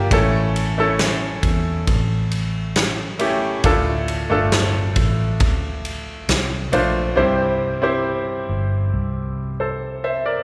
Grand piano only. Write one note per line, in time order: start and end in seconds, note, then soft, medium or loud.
0.00 0.13 A#3 medium
0.00 0.13 D4 medium
0.00 0.13 F4 medium
0.00 0.13 G4 loud
0.11 0.74 A3 medium
0.11 0.74 C#4 medium
0.11 0.75 E4 medium
0.11 0.75 A4 medium
0.78 2.45 A3 medium
0.78 2.45 C#4 medium
0.78 2.46 E4 medium
0.78 2.46 A4 medium
3.19 3.61 A3 medium
3.19 3.62 C#4 medium
3.19 3.62 E4 medium
3.19 3.62 G4 medium
3.64 4.93 A2 medium
3.64 4.27 A3 medium
3.64 4.27 D4 medium
3.64 4.27 F4 medium
3.64 4.28 A4 medium
4.30 5.97 A3 medium
4.30 5.98 D4 medium
4.30 5.98 F4 medium
4.30 5.98 A4 medium
6.72 7.14 A3 medium
6.72 7.15 D4 medium
6.72 7.15 F4 medium
6.72 7.15 C5 medium
7.16 8.45 G2 medium
7.16 7.79 C4 medium
7.16 7.79 E4 medium
7.16 7.80 G4 medium
7.16 7.80 C5 medium
7.82 9.50 C4 medium
7.82 9.50 E4 medium
7.82 9.51 G4 medium
7.82 9.38 C5 medium
9.60 10.02 A4 medium
9.60 10.02 C5 medium
10.04 10.25 C5 medium
10.04 10.25 E5 medium
10.26 10.43 A#4 medium
10.26 10.43 D5 medium